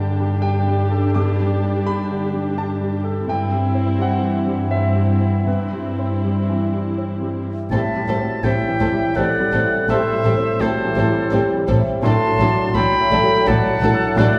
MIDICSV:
0, 0, Header, 1, 10, 480
1, 0, Start_track
1, 0, Tempo, 710900
1, 782, Time_signature, 3, 2, 24, 8
1, 2695, Tempo, 745342
1, 5095, Tempo, 716846
1, 9561, End_track
2, 0, Start_track
2, 0, Title_t, "Oboe"
2, 0, Program_c, 0, 68
2, 5092, Note_on_c, 0, 81, 83
2, 5579, Note_on_c, 0, 79, 84
2, 5589, Note_off_c, 0, 81, 0
2, 6066, Note_on_c, 0, 78, 84
2, 6076, Note_off_c, 0, 79, 0
2, 6549, Note_off_c, 0, 78, 0
2, 6557, Note_on_c, 0, 76, 91
2, 7033, Note_on_c, 0, 72, 81
2, 7043, Note_off_c, 0, 76, 0
2, 7748, Note_off_c, 0, 72, 0
2, 7985, Note_on_c, 0, 84, 97
2, 8463, Note_on_c, 0, 83, 111
2, 8473, Note_off_c, 0, 84, 0
2, 8948, Note_on_c, 0, 81, 97
2, 8958, Note_off_c, 0, 83, 0
2, 9416, Note_off_c, 0, 81, 0
2, 9421, Note_on_c, 0, 78, 96
2, 9561, Note_off_c, 0, 78, 0
2, 9561, End_track
3, 0, Start_track
3, 0, Title_t, "Flute"
3, 0, Program_c, 1, 73
3, 5095, Note_on_c, 1, 76, 66
3, 5554, Note_off_c, 1, 76, 0
3, 5570, Note_on_c, 1, 76, 67
3, 6066, Note_on_c, 1, 74, 70
3, 6076, Note_off_c, 1, 76, 0
3, 6545, Note_off_c, 1, 74, 0
3, 6549, Note_on_c, 1, 72, 70
3, 7026, Note_on_c, 1, 69, 62
3, 7036, Note_off_c, 1, 72, 0
3, 7745, Note_off_c, 1, 69, 0
3, 7975, Note_on_c, 1, 81, 81
3, 8436, Note_off_c, 1, 81, 0
3, 8463, Note_on_c, 1, 79, 85
3, 8947, Note_on_c, 1, 78, 84
3, 8958, Note_off_c, 1, 79, 0
3, 9421, Note_on_c, 1, 74, 86
3, 9432, Note_off_c, 1, 78, 0
3, 9561, Note_off_c, 1, 74, 0
3, 9561, End_track
4, 0, Start_track
4, 0, Title_t, "Violin section"
4, 0, Program_c, 2, 48
4, 5095, Note_on_c, 2, 69, 46
4, 5149, Note_off_c, 2, 69, 0
4, 5339, Note_on_c, 2, 69, 47
4, 5392, Note_off_c, 2, 69, 0
4, 5575, Note_on_c, 2, 69, 45
4, 5629, Note_off_c, 2, 69, 0
4, 5820, Note_on_c, 2, 69, 46
4, 5874, Note_off_c, 2, 69, 0
4, 6058, Note_on_c, 2, 69, 43
4, 6111, Note_off_c, 2, 69, 0
4, 6300, Note_on_c, 2, 69, 51
4, 6353, Note_off_c, 2, 69, 0
4, 6548, Note_on_c, 2, 69, 56
4, 6602, Note_off_c, 2, 69, 0
4, 6786, Note_on_c, 2, 69, 44
4, 6840, Note_off_c, 2, 69, 0
4, 7031, Note_on_c, 2, 69, 57
4, 7084, Note_off_c, 2, 69, 0
4, 7275, Note_on_c, 2, 69, 47
4, 7329, Note_off_c, 2, 69, 0
4, 7502, Note_on_c, 2, 69, 52
4, 7556, Note_off_c, 2, 69, 0
4, 7750, Note_on_c, 2, 69, 60
4, 7803, Note_off_c, 2, 69, 0
4, 7992, Note_on_c, 2, 69, 55
4, 8046, Note_off_c, 2, 69, 0
4, 8238, Note_on_c, 2, 69, 53
4, 8292, Note_off_c, 2, 69, 0
4, 8476, Note_on_c, 2, 69, 55
4, 8530, Note_off_c, 2, 69, 0
4, 8712, Note_on_c, 2, 69, 54
4, 8765, Note_off_c, 2, 69, 0
4, 8940, Note_on_c, 2, 69, 60
4, 8994, Note_off_c, 2, 69, 0
4, 9190, Note_on_c, 2, 69, 62
4, 9244, Note_off_c, 2, 69, 0
4, 9430, Note_on_c, 2, 69, 70
4, 9483, Note_off_c, 2, 69, 0
4, 9561, End_track
5, 0, Start_track
5, 0, Title_t, "French horn section"
5, 0, Program_c, 3, 60
5, 5092, Note_on_c, 3, 64, 56
5, 5319, Note_off_c, 3, 64, 0
5, 5335, Note_on_c, 3, 66, 54
5, 5579, Note_off_c, 3, 66, 0
5, 5585, Note_on_c, 3, 64, 52
5, 6059, Note_on_c, 3, 69, 64
5, 6066, Note_off_c, 3, 64, 0
5, 7024, Note_on_c, 3, 66, 60
5, 7025, Note_off_c, 3, 69, 0
5, 7265, Note_off_c, 3, 66, 0
5, 7276, Note_on_c, 3, 64, 58
5, 7507, Note_on_c, 3, 67, 68
5, 7511, Note_off_c, 3, 64, 0
5, 7746, Note_off_c, 3, 67, 0
5, 7757, Note_on_c, 3, 72, 73
5, 7985, Note_off_c, 3, 72, 0
5, 7995, Note_on_c, 3, 69, 66
5, 8230, Note_off_c, 3, 69, 0
5, 8241, Note_on_c, 3, 66, 69
5, 8476, Note_off_c, 3, 66, 0
5, 8479, Note_on_c, 3, 54, 68
5, 8708, Note_on_c, 3, 69, 72
5, 8714, Note_off_c, 3, 54, 0
5, 8945, Note_off_c, 3, 69, 0
5, 8946, Note_on_c, 3, 66, 68
5, 9180, Note_off_c, 3, 66, 0
5, 9182, Note_on_c, 3, 64, 72
5, 9411, Note_off_c, 3, 64, 0
5, 9423, Note_on_c, 3, 66, 68
5, 9561, Note_off_c, 3, 66, 0
5, 9561, End_track
6, 0, Start_track
6, 0, Title_t, "Violin section"
6, 0, Program_c, 4, 48
6, 5091, Note_on_c, 4, 60, 53
6, 5145, Note_off_c, 4, 60, 0
6, 5345, Note_on_c, 4, 60, 46
6, 5399, Note_off_c, 4, 60, 0
6, 5586, Note_on_c, 4, 60, 53
6, 5640, Note_off_c, 4, 60, 0
6, 5819, Note_on_c, 4, 60, 49
6, 5873, Note_off_c, 4, 60, 0
6, 6071, Note_on_c, 4, 60, 50
6, 6125, Note_off_c, 4, 60, 0
6, 6321, Note_on_c, 4, 60, 47
6, 6374, Note_off_c, 4, 60, 0
6, 6555, Note_on_c, 4, 60, 59
6, 6608, Note_off_c, 4, 60, 0
6, 6791, Note_on_c, 4, 60, 47
6, 6844, Note_off_c, 4, 60, 0
6, 7022, Note_on_c, 4, 60, 48
6, 7075, Note_off_c, 4, 60, 0
6, 7259, Note_on_c, 4, 60, 50
6, 7313, Note_off_c, 4, 60, 0
6, 7508, Note_on_c, 4, 60, 59
6, 7561, Note_off_c, 4, 60, 0
6, 7744, Note_on_c, 4, 60, 56
6, 7797, Note_off_c, 4, 60, 0
6, 7990, Note_on_c, 4, 62, 54
6, 8043, Note_off_c, 4, 62, 0
6, 8231, Note_on_c, 4, 62, 52
6, 8285, Note_off_c, 4, 62, 0
6, 8459, Note_on_c, 4, 62, 52
6, 8513, Note_off_c, 4, 62, 0
6, 8705, Note_on_c, 4, 62, 59
6, 8759, Note_off_c, 4, 62, 0
6, 8939, Note_on_c, 4, 62, 56
6, 8993, Note_off_c, 4, 62, 0
6, 9174, Note_on_c, 4, 62, 66
6, 9228, Note_off_c, 4, 62, 0
6, 9420, Note_on_c, 4, 62, 75
6, 9474, Note_off_c, 4, 62, 0
6, 9561, End_track
7, 0, Start_track
7, 0, Title_t, "Grand piano"
7, 0, Program_c, 5, 0
7, 0, Control_c, 5, 64, 127
7, 0, Note_on_c, 5, 43, 43
7, 0, Note_on_c, 5, 50, 35
7, 0, Note_on_c, 5, 55, 42
7, 0, Note_on_c, 5, 62, 43
7, 0, Note_on_c, 5, 81, 62
7, 0, Note_on_c, 5, 83, 69
7, 70, Note_off_c, 5, 55, 0
7, 135, Note_on_c, 5, 55, 41
7, 226, Note_off_c, 5, 50, 0
7, 263, Note_off_c, 5, 81, 0
7, 283, Note_on_c, 5, 79, 76
7, 295, Note_off_c, 5, 62, 0
7, 295, Note_on_c, 5, 62, 41
7, 387, Note_off_c, 5, 55, 0
7, 456, Note_on_c, 5, 55, 40
7, 553, Note_off_c, 5, 62, 0
7, 616, Note_on_c, 5, 69, 43
7, 719, Note_off_c, 5, 55, 0
7, 751, Note_off_c, 5, 79, 0
7, 757, Note_off_c, 5, 43, 0
7, 774, Note_on_c, 5, 86, 70
7, 782, Note_on_c, 5, 43, 50
7, 795, Control_c, 5, 64, 0
7, 801, Note_off_c, 5, 83, 0
7, 879, Note_off_c, 5, 69, 0
7, 913, Control_c, 5, 64, 127
7, 949, Note_on_c, 5, 55, 43
7, 1102, Note_on_c, 5, 62, 39
7, 1202, Note_off_c, 5, 55, 0
7, 1233, Note_off_c, 5, 86, 0
7, 1259, Note_on_c, 5, 83, 88
7, 1260, Note_on_c, 5, 55, 44
7, 1358, Note_off_c, 5, 62, 0
7, 1423, Note_on_c, 5, 50, 40
7, 1517, Note_off_c, 5, 55, 0
7, 1579, Note_on_c, 5, 55, 40
7, 1678, Note_off_c, 5, 50, 0
7, 1712, Note_off_c, 5, 83, 0
7, 1738, Note_on_c, 5, 62, 40
7, 1742, Note_on_c, 5, 81, 67
7, 1835, Note_off_c, 5, 55, 0
7, 1899, Note_on_c, 5, 55, 38
7, 1994, Note_off_c, 5, 62, 0
7, 2053, Note_on_c, 5, 69, 44
7, 2154, Note_off_c, 5, 55, 0
7, 2191, Note_off_c, 5, 43, 0
7, 2191, Note_off_c, 5, 81, 0
7, 2215, Note_off_c, 5, 69, 0
7, 2217, Note_on_c, 5, 43, 45
7, 2224, Note_on_c, 5, 79, 69
7, 2229, Control_c, 5, 64, 0
7, 2344, Control_c, 5, 64, 127
7, 2379, Note_on_c, 5, 55, 41
7, 2530, Note_on_c, 5, 60, 37
7, 2632, Note_off_c, 5, 55, 0
7, 2671, Note_off_c, 5, 79, 0
7, 2694, Note_on_c, 5, 55, 39
7, 2711, Note_on_c, 5, 78, 67
7, 2785, Note_off_c, 5, 60, 0
7, 2846, Note_on_c, 5, 52, 34
7, 2942, Note_off_c, 5, 55, 0
7, 3005, Note_on_c, 5, 55, 37
7, 3097, Note_off_c, 5, 52, 0
7, 3144, Note_off_c, 5, 78, 0
7, 3156, Note_on_c, 5, 60, 37
7, 3157, Note_on_c, 5, 76, 71
7, 3257, Note_off_c, 5, 55, 0
7, 3315, Note_on_c, 5, 55, 37
7, 3414, Note_off_c, 5, 60, 0
7, 3481, Note_on_c, 5, 64, 38
7, 3577, Note_off_c, 5, 55, 0
7, 3617, Note_off_c, 5, 76, 0
7, 3619, Note_off_c, 5, 43, 0
7, 3646, Note_on_c, 5, 43, 39
7, 3648, Note_on_c, 5, 71, 47
7, 3659, Control_c, 5, 64, 0
7, 3743, Note_off_c, 5, 64, 0
7, 3768, Control_c, 5, 64, 127
7, 3815, Note_on_c, 5, 55, 28
7, 3982, Note_on_c, 5, 60, 32
7, 4070, Note_off_c, 5, 55, 0
7, 4145, Note_on_c, 5, 55, 34
7, 4232, Note_off_c, 5, 60, 0
7, 4306, Note_on_c, 5, 52, 32
7, 4393, Note_off_c, 5, 55, 0
7, 4464, Note_on_c, 5, 55, 35
7, 4554, Note_off_c, 5, 52, 0
7, 4586, Note_off_c, 5, 71, 0
7, 4620, Note_on_c, 5, 60, 33
7, 4715, Note_off_c, 5, 55, 0
7, 4776, Note_on_c, 5, 55, 37
7, 4875, Note_off_c, 5, 60, 0
7, 4940, Note_on_c, 5, 64, 32
7, 5032, Note_off_c, 5, 55, 0
7, 5068, Note_off_c, 5, 43, 0
7, 5093, Note_on_c, 5, 45, 50
7, 5096, Note_off_c, 5, 64, 0
7, 5107, Control_c, 5, 64, 0
7, 5225, Control_c, 5, 64, 127
7, 5259, Note_on_c, 5, 55, 38
7, 5420, Note_on_c, 5, 60, 36
7, 5517, Note_off_c, 5, 55, 0
7, 5583, Note_on_c, 5, 55, 40
7, 5677, Note_off_c, 5, 60, 0
7, 5741, Note_on_c, 5, 52, 40
7, 5839, Note_off_c, 5, 55, 0
7, 5900, Note_on_c, 5, 55, 45
7, 5999, Note_off_c, 5, 52, 0
7, 6064, Note_on_c, 5, 60, 38
7, 6160, Note_off_c, 5, 55, 0
7, 6223, Note_on_c, 5, 55, 44
7, 6323, Note_off_c, 5, 60, 0
7, 6383, Note_on_c, 5, 64, 45
7, 6483, Note_off_c, 5, 55, 0
7, 6521, Note_off_c, 5, 45, 0
7, 6546, Note_on_c, 5, 45, 52
7, 6561, Control_c, 5, 64, 0
7, 6642, Note_off_c, 5, 64, 0
7, 6670, Control_c, 5, 64, 127
7, 6711, Note_on_c, 5, 55, 41
7, 6871, Note_on_c, 5, 60, 47
7, 6965, Note_off_c, 5, 55, 0
7, 7024, Note_on_c, 5, 55, 46
7, 7125, Note_off_c, 5, 60, 0
7, 7190, Note_on_c, 5, 52, 46
7, 7281, Note_off_c, 5, 55, 0
7, 7348, Note_on_c, 5, 55, 50
7, 7444, Note_off_c, 5, 52, 0
7, 7512, Note_on_c, 5, 60, 46
7, 7603, Note_off_c, 5, 55, 0
7, 7668, Note_on_c, 5, 55, 49
7, 7764, Note_off_c, 5, 60, 0
7, 7825, Note_on_c, 5, 64, 54
7, 7921, Note_off_c, 5, 55, 0
7, 7956, Note_off_c, 5, 45, 0
7, 7984, Note_off_c, 5, 64, 0
7, 7984, Note_on_c, 5, 45, 63
7, 7995, Control_c, 5, 64, 0
7, 8123, Control_c, 5, 64, 127
7, 8141, Note_on_c, 5, 54, 45
7, 8305, Note_on_c, 5, 62, 42
7, 8401, Note_off_c, 5, 54, 0
7, 8471, Note_on_c, 5, 54, 53
7, 8564, Note_off_c, 5, 62, 0
7, 8636, Note_on_c, 5, 57, 47
7, 8726, Note_off_c, 5, 54, 0
7, 8790, Note_on_c, 5, 54, 55
7, 8886, Note_off_c, 5, 57, 0
7, 8941, Note_on_c, 5, 62, 52
7, 9040, Note_off_c, 5, 54, 0
7, 9103, Note_on_c, 5, 54, 53
7, 9194, Note_off_c, 5, 62, 0
7, 9260, Note_on_c, 5, 69, 59
7, 9353, Note_off_c, 5, 54, 0
7, 9388, Note_off_c, 5, 45, 0
7, 9412, Note_on_c, 5, 45, 61
7, 9427, Control_c, 5, 64, 0
7, 9510, Note_off_c, 5, 69, 0
7, 9536, Control_c, 5, 64, 127
7, 9561, Note_off_c, 5, 45, 0
7, 9561, End_track
8, 0, Start_track
8, 0, Title_t, "Viola section"
8, 0, Program_c, 6, 48
8, 0, Note_on_c, 6, 62, 57
8, 0, Note_on_c, 6, 67, 59
8, 2191, Note_off_c, 6, 62, 0
8, 2191, Note_off_c, 6, 67, 0
8, 2215, Note_on_c, 6, 64, 58
8, 2218, Note_on_c, 6, 60, 55
8, 3134, Note_off_c, 6, 64, 0
8, 3136, Note_off_c, 6, 60, 0
8, 3159, Note_on_c, 6, 60, 49
8, 3159, Note_on_c, 6, 64, 51
8, 3634, Note_off_c, 6, 60, 0
8, 3634, Note_off_c, 6, 64, 0
8, 3640, Note_on_c, 6, 60, 47
8, 3642, Note_on_c, 6, 64, 49
8, 4934, Note_off_c, 6, 60, 0
8, 4935, Note_off_c, 6, 64, 0
8, 5105, Note_on_c, 6, 55, 58
8, 5158, Note_off_c, 6, 55, 0
8, 5347, Note_on_c, 6, 55, 50
8, 5400, Note_off_c, 6, 55, 0
8, 5587, Note_on_c, 6, 55, 51
8, 5641, Note_off_c, 6, 55, 0
8, 5827, Note_on_c, 6, 55, 50
8, 5880, Note_off_c, 6, 55, 0
8, 6070, Note_on_c, 6, 55, 56
8, 6123, Note_off_c, 6, 55, 0
8, 6306, Note_on_c, 6, 55, 50
8, 6360, Note_off_c, 6, 55, 0
8, 6559, Note_on_c, 6, 55, 62
8, 6612, Note_off_c, 6, 55, 0
8, 6791, Note_on_c, 6, 55, 53
8, 6845, Note_off_c, 6, 55, 0
8, 7025, Note_on_c, 6, 55, 54
8, 7078, Note_off_c, 6, 55, 0
8, 7269, Note_on_c, 6, 55, 53
8, 7322, Note_off_c, 6, 55, 0
8, 7504, Note_on_c, 6, 55, 61
8, 7558, Note_off_c, 6, 55, 0
8, 7739, Note_on_c, 6, 55, 53
8, 7792, Note_off_c, 6, 55, 0
8, 7981, Note_on_c, 6, 54, 62
8, 8035, Note_off_c, 6, 54, 0
8, 8228, Note_on_c, 6, 54, 54
8, 8281, Note_off_c, 6, 54, 0
8, 8470, Note_on_c, 6, 54, 65
8, 8524, Note_off_c, 6, 54, 0
8, 8715, Note_on_c, 6, 54, 62
8, 8769, Note_off_c, 6, 54, 0
8, 8949, Note_on_c, 6, 54, 72
8, 9002, Note_off_c, 6, 54, 0
8, 9184, Note_on_c, 6, 54, 53
8, 9237, Note_off_c, 6, 54, 0
8, 9420, Note_on_c, 6, 54, 68
8, 9474, Note_off_c, 6, 54, 0
8, 9561, End_track
9, 0, Start_track
9, 0, Title_t, "Cello section"
9, 0, Program_c, 7, 48
9, 0, Note_on_c, 7, 43, 57
9, 2190, Note_off_c, 7, 43, 0
9, 2221, Note_on_c, 7, 43, 66
9, 4938, Note_off_c, 7, 43, 0
9, 5088, Note_on_c, 7, 45, 63
9, 5142, Note_off_c, 7, 45, 0
9, 5335, Note_on_c, 7, 45, 51
9, 5389, Note_off_c, 7, 45, 0
9, 5580, Note_on_c, 7, 45, 63
9, 5633, Note_off_c, 7, 45, 0
9, 5821, Note_on_c, 7, 45, 64
9, 5875, Note_off_c, 7, 45, 0
9, 6065, Note_on_c, 7, 45, 54
9, 6119, Note_off_c, 7, 45, 0
9, 6311, Note_on_c, 7, 45, 45
9, 6365, Note_off_c, 7, 45, 0
9, 6550, Note_on_c, 7, 45, 65
9, 6603, Note_off_c, 7, 45, 0
9, 6786, Note_on_c, 7, 45, 55
9, 6840, Note_off_c, 7, 45, 0
9, 7031, Note_on_c, 7, 45, 62
9, 7085, Note_off_c, 7, 45, 0
9, 7269, Note_on_c, 7, 45, 67
9, 7322, Note_off_c, 7, 45, 0
9, 7508, Note_on_c, 7, 45, 62
9, 7562, Note_off_c, 7, 45, 0
9, 7749, Note_on_c, 7, 45, 58
9, 7803, Note_off_c, 7, 45, 0
9, 7984, Note_on_c, 7, 45, 73
9, 8037, Note_off_c, 7, 45, 0
9, 8230, Note_on_c, 7, 45, 67
9, 8284, Note_off_c, 7, 45, 0
9, 8467, Note_on_c, 7, 45, 68
9, 8521, Note_off_c, 7, 45, 0
9, 8715, Note_on_c, 7, 45, 69
9, 8768, Note_off_c, 7, 45, 0
9, 8954, Note_on_c, 7, 45, 75
9, 9007, Note_off_c, 7, 45, 0
9, 9190, Note_on_c, 7, 45, 68
9, 9244, Note_off_c, 7, 45, 0
9, 9418, Note_on_c, 7, 45, 73
9, 9472, Note_off_c, 7, 45, 0
9, 9561, End_track
10, 0, Start_track
10, 0, Title_t, "Double bass section"
10, 0, Program_c, 8, 48
10, 5088, Note_on_c, 8, 33, 57
10, 5142, Note_off_c, 8, 33, 0
10, 5333, Note_on_c, 8, 33, 56
10, 5387, Note_off_c, 8, 33, 0
10, 5574, Note_on_c, 8, 33, 54
10, 5628, Note_off_c, 8, 33, 0
10, 5821, Note_on_c, 8, 33, 58
10, 5875, Note_off_c, 8, 33, 0
10, 6055, Note_on_c, 8, 33, 60
10, 6109, Note_off_c, 8, 33, 0
10, 6300, Note_on_c, 8, 33, 57
10, 6354, Note_off_c, 8, 33, 0
10, 6547, Note_on_c, 8, 33, 60
10, 6600, Note_off_c, 8, 33, 0
10, 6783, Note_on_c, 8, 33, 61
10, 6836, Note_off_c, 8, 33, 0
10, 7031, Note_on_c, 8, 33, 59
10, 7084, Note_off_c, 8, 33, 0
10, 7264, Note_on_c, 8, 33, 59
10, 7318, Note_off_c, 8, 33, 0
10, 7511, Note_on_c, 8, 33, 62
10, 7565, Note_off_c, 8, 33, 0
10, 7753, Note_on_c, 8, 33, 64
10, 7807, Note_off_c, 8, 33, 0
10, 7988, Note_on_c, 8, 33, 59
10, 8042, Note_off_c, 8, 33, 0
10, 8221, Note_on_c, 8, 33, 69
10, 8274, Note_off_c, 8, 33, 0
10, 8466, Note_on_c, 8, 33, 64
10, 8520, Note_off_c, 8, 33, 0
10, 8709, Note_on_c, 8, 33, 63
10, 8763, Note_off_c, 8, 33, 0
10, 8950, Note_on_c, 8, 33, 75
10, 9004, Note_off_c, 8, 33, 0
10, 9172, Note_on_c, 8, 33, 73
10, 9226, Note_off_c, 8, 33, 0
10, 9410, Note_on_c, 8, 33, 72
10, 9464, Note_off_c, 8, 33, 0
10, 9561, End_track
0, 0, End_of_file